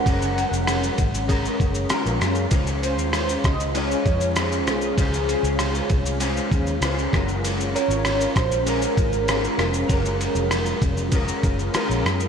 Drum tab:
RD |x-x-x-x-x-x-x-x-|x-x-x-x-x-x-x-x-|x-x-x-x-x-x-x-x-|x-x-x-x-x-x-x-x-|
SH |xxxxxxxxxxxxxxxx|xxxxxxxxxxxxxxxx|xxxxxxxxxxxxxxxx|xxxxxxxxxxxxxxxx|
SD |----r-------r-r-|----r-r-----r-r-|----r-------r-r-|----r-r-----r-r-|
BD |o-----o-o-o-----|o-----o---o-----|o-----o---o---o-|------o---o-----|

RD |x-x-x-x-x-x-x-x-|
SH |xxxxxxxxxxxxxxxx|
SD |----r-------r-r-|
BD |o-----o-o-o-----|